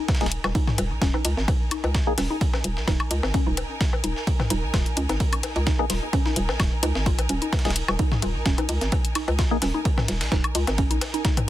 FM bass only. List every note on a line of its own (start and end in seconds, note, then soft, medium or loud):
0.21 0.39 D#1 medium
0.44 0.53 D#1 medium
0.78 0.92 D#1 medium
0.91 0.99 A#1 medium
1.02 1.11 D#1 medium
1.25 1.35 C#2 medium
1.37 1.46 G#1 medium
1.84 2.02 C#2 medium
2.18 2.28 D#1 medium
2.64 2.78 D#1 medium
2.77 2.85 A#1 medium
2.88 2.97 D#1 medium
3.11 3.21 C#2 medium
3.23 3.32 G#1 medium
3.47 3.65 D#1 medium
4.04 4.14 D#1 medium
4.50 4.64 D#1 medium
4.63 4.71 A#1 medium
4.74 4.83 D#1 medium
4.97 5.07 C#2 medium
5.09 5.18 G#1 medium
5.56 5.74 C#2 medium
5.90 6.00 D#1 medium
6.36 6.50 D#1 loud
6.49 6.57 A#1 medium
6.60 6.70 D#1 medium
6.83 6.93 C#2 medium
6.95 7.20 G#1 medium
7.19 7.27 A#1 loud
7.29 7.39 D#1 medium
7.65 7.83 D#1 medium
7.88 7.97 D#1 medium
8.22 8.36 D#1 loud
8.35 8.43 A#1 medium
8.46 8.56 D#1 medium
8.69 8.79 C#2 medium
8.81 8.90 G#1 medium
9.28 9.46 C#2 medium
9.62 9.72 D#1 medium
10.08 10.23 D#1 medium
10.21 10.29 A#1 medium
10.32 10.42 D#1 medium
10.55 10.65 C#2 medium
10.68 10.92 G#1 medium
10.91 10.99 A#1 loud